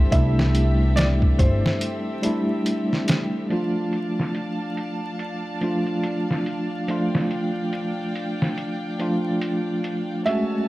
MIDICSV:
0, 0, Header, 1, 6, 480
1, 0, Start_track
1, 0, Key_signature, -1, "minor"
1, 0, Tempo, 845070
1, 70, Time_signature, 4, 2, 24, 8
1, 6066, End_track
2, 0, Start_track
2, 0, Title_t, "Felt piano"
2, 0, Program_c, 0, 0
2, 0, Note_on_c, 0, 72, 81
2, 67, Note_on_c, 0, 76, 89
2, 84, Note_off_c, 0, 72, 0
2, 526, Note_off_c, 0, 76, 0
2, 544, Note_on_c, 0, 74, 93
2, 599, Note_off_c, 0, 74, 0
2, 787, Note_on_c, 0, 72, 77
2, 1726, Note_off_c, 0, 72, 0
2, 5825, Note_on_c, 0, 76, 98
2, 6066, Note_off_c, 0, 76, 0
2, 6066, End_track
3, 0, Start_track
3, 0, Title_t, "Violin section"
3, 0, Program_c, 1, 48
3, 0, Note_on_c, 1, 60, 83
3, 0, Note_on_c, 1, 67, 79
3, 0, Note_on_c, 1, 69, 74
3, 0, Note_on_c, 1, 76, 91
3, 1967, Note_off_c, 1, 60, 0
3, 1967, Note_off_c, 1, 69, 0
3, 1967, Note_off_c, 1, 76, 0
3, 1968, Note_off_c, 1, 67, 0
3, 1985, Note_on_c, 1, 77, 67
3, 1987, Note_on_c, 1, 62, 69
3, 1987, Note_on_c, 1, 74, 65
3, 1988, Note_on_c, 1, 81, 77
3, 3890, Note_off_c, 1, 81, 0
3, 3908, Note_on_c, 1, 79, 77
3, 5805, Note_off_c, 1, 77, 0
3, 5806, Note_off_c, 1, 62, 0
3, 5806, Note_off_c, 1, 74, 0
3, 5810, Note_off_c, 1, 79, 0
3, 5830, Note_on_c, 1, 66, 73
3, 5832, Note_on_c, 1, 73, 64
3, 5832, Note_on_c, 1, 80, 69
3, 5832, Note_on_c, 1, 81, 85
3, 6066, Note_off_c, 1, 66, 0
3, 6066, Note_off_c, 1, 73, 0
3, 6066, Note_off_c, 1, 80, 0
3, 6066, Note_off_c, 1, 81, 0
3, 6066, End_track
4, 0, Start_track
4, 0, Title_t, "Tine electric piano"
4, 0, Program_c, 2, 4
4, 0, Control_c, 2, 64, 127
4, 0, Note_on_c, 2, 55, 90
4, 0, Note_on_c, 2, 57, 82
4, 0, Note_on_c, 2, 62, 84
4, 0, Note_on_c, 2, 64, 92
4, 63, Note_off_c, 2, 55, 0
4, 63, Note_on_c, 2, 55, 93
4, 68, Note_off_c, 2, 57, 0
4, 68, Note_on_c, 2, 57, 87
4, 73, Note_off_c, 2, 62, 0
4, 73, Note_on_c, 2, 62, 81
4, 77, Note_off_c, 2, 64, 0
4, 77, Note_on_c, 2, 64, 99
4, 1243, Note_off_c, 2, 55, 0
4, 1246, Note_off_c, 2, 57, 0
4, 1248, Note_off_c, 2, 62, 0
4, 1251, Note_off_c, 2, 64, 0
4, 1264, Note_on_c, 2, 55, 93
4, 1271, Note_on_c, 2, 57, 79
4, 1274, Note_on_c, 2, 62, 81
4, 1280, Note_on_c, 2, 64, 98
4, 1964, Note_off_c, 2, 55, 0
4, 1967, Note_off_c, 2, 57, 0
4, 1969, Note_off_c, 2, 62, 0
4, 1972, Note_off_c, 2, 64, 0
4, 1987, Note_on_c, 2, 53, 76
4, 1992, Note_on_c, 2, 57, 66
4, 1997, Control_c, 2, 64, 0
4, 1997, Note_on_c, 2, 62, 67
4, 2002, Note_on_c, 2, 65, 85
4, 2105, Control_c, 2, 64, 127
4, 3165, Note_off_c, 2, 53, 0
4, 3168, Note_off_c, 2, 57, 0
4, 3170, Note_off_c, 2, 62, 0
4, 3173, Note_off_c, 2, 65, 0
4, 3186, Note_on_c, 2, 53, 73
4, 3192, Note_on_c, 2, 57, 67
4, 3196, Note_on_c, 2, 62, 74
4, 3201, Note_on_c, 2, 65, 79
4, 3885, Note_off_c, 2, 53, 0
4, 3888, Note_off_c, 2, 57, 0
4, 3890, Note_off_c, 2, 62, 0
4, 3892, Note_off_c, 2, 65, 0
4, 3908, Note_on_c, 2, 53, 79
4, 3913, Note_on_c, 2, 57, 75
4, 3917, Note_on_c, 2, 62, 71
4, 3923, Note_on_c, 2, 65, 87
4, 5086, Note_off_c, 2, 53, 0
4, 5088, Note_off_c, 2, 57, 0
4, 5090, Note_off_c, 2, 62, 0
4, 5093, Note_off_c, 2, 65, 0
4, 5106, Note_on_c, 2, 53, 76
4, 5111, Note_on_c, 2, 57, 70
4, 5115, Note_on_c, 2, 62, 69
4, 5120, Note_on_c, 2, 65, 87
4, 5805, Note_off_c, 2, 53, 0
4, 5807, Note_off_c, 2, 57, 0
4, 5809, Note_off_c, 2, 62, 0
4, 5812, Note_off_c, 2, 65, 0
4, 5829, Note_on_c, 2, 56, 85
4, 5833, Note_on_c, 2, 57, 76
4, 5837, Control_c, 2, 64, 0
4, 5838, Note_on_c, 2, 61, 74
4, 5843, Note_on_c, 2, 66, 86
4, 5941, Control_c, 2, 64, 127
4, 6066, Note_off_c, 2, 56, 0
4, 6066, Note_off_c, 2, 57, 0
4, 6066, Note_off_c, 2, 61, 0
4, 6066, Note_off_c, 2, 66, 0
4, 6066, End_track
5, 0, Start_track
5, 0, Title_t, "Upright bass"
5, 0, Program_c, 3, 32
5, 71, Note_on_c, 3, 36, 98
5, 772, Note_off_c, 3, 36, 0
5, 790, Note_on_c, 3, 31, 108
5, 916, Note_off_c, 3, 31, 0
5, 6066, End_track
6, 0, Start_track
6, 0, Title_t, "Drums"
6, 69, Note_on_c, 9, 36, 105
6, 70, Note_on_c, 9, 42, 84
6, 126, Note_off_c, 9, 36, 0
6, 127, Note_off_c, 9, 42, 0
6, 223, Note_on_c, 9, 38, 52
6, 280, Note_off_c, 9, 38, 0
6, 311, Note_on_c, 9, 42, 67
6, 367, Note_off_c, 9, 42, 0
6, 551, Note_on_c, 9, 42, 83
6, 560, Note_on_c, 9, 38, 109
6, 608, Note_off_c, 9, 42, 0
6, 616, Note_off_c, 9, 38, 0
6, 693, Note_on_c, 9, 36, 88
6, 750, Note_off_c, 9, 36, 0
6, 790, Note_on_c, 9, 36, 90
6, 791, Note_on_c, 9, 42, 69
6, 846, Note_off_c, 9, 36, 0
6, 848, Note_off_c, 9, 42, 0
6, 942, Note_on_c, 9, 38, 49
6, 999, Note_off_c, 9, 38, 0
6, 1029, Note_on_c, 9, 42, 85
6, 1086, Note_off_c, 9, 42, 0
6, 1268, Note_on_c, 9, 42, 70
6, 1325, Note_off_c, 9, 42, 0
6, 1510, Note_on_c, 9, 42, 62
6, 1567, Note_off_c, 9, 42, 0
6, 1663, Note_on_c, 9, 38, 31
6, 1720, Note_off_c, 9, 38, 0
6, 1749, Note_on_c, 9, 42, 80
6, 1757, Note_on_c, 9, 38, 101
6, 1806, Note_off_c, 9, 42, 0
6, 1814, Note_off_c, 9, 38, 0
6, 1990, Note_on_c, 9, 42, 74
6, 2047, Note_off_c, 9, 42, 0
6, 2231, Note_on_c, 9, 42, 58
6, 2288, Note_off_c, 9, 42, 0
6, 2382, Note_on_c, 9, 38, 33
6, 2439, Note_off_c, 9, 38, 0
6, 2468, Note_on_c, 9, 42, 69
6, 2525, Note_off_c, 9, 42, 0
6, 2710, Note_on_c, 9, 42, 58
6, 2767, Note_off_c, 9, 42, 0
6, 2949, Note_on_c, 9, 42, 69
6, 3006, Note_off_c, 9, 42, 0
6, 3189, Note_on_c, 9, 42, 59
6, 3246, Note_off_c, 9, 42, 0
6, 3331, Note_on_c, 9, 42, 39
6, 3388, Note_off_c, 9, 42, 0
6, 3427, Note_on_c, 9, 42, 75
6, 3484, Note_off_c, 9, 42, 0
6, 3582, Note_on_c, 9, 38, 32
6, 3639, Note_off_c, 9, 38, 0
6, 3670, Note_on_c, 9, 42, 59
6, 3727, Note_off_c, 9, 42, 0
6, 3909, Note_on_c, 9, 42, 74
6, 3966, Note_off_c, 9, 42, 0
6, 4060, Note_on_c, 9, 38, 47
6, 4117, Note_off_c, 9, 38, 0
6, 4150, Note_on_c, 9, 42, 57
6, 4207, Note_off_c, 9, 42, 0
6, 4389, Note_on_c, 9, 42, 68
6, 4446, Note_off_c, 9, 42, 0
6, 4631, Note_on_c, 9, 42, 59
6, 4688, Note_off_c, 9, 42, 0
6, 4782, Note_on_c, 9, 38, 44
6, 4839, Note_off_c, 9, 38, 0
6, 4871, Note_on_c, 9, 42, 73
6, 4928, Note_off_c, 9, 42, 0
6, 5109, Note_on_c, 9, 42, 60
6, 5166, Note_off_c, 9, 42, 0
6, 5348, Note_on_c, 9, 42, 80
6, 5404, Note_off_c, 9, 42, 0
6, 5589, Note_on_c, 9, 42, 61
6, 5646, Note_off_c, 9, 42, 0
6, 5831, Note_on_c, 9, 42, 72
6, 5888, Note_off_c, 9, 42, 0
6, 6066, End_track
0, 0, End_of_file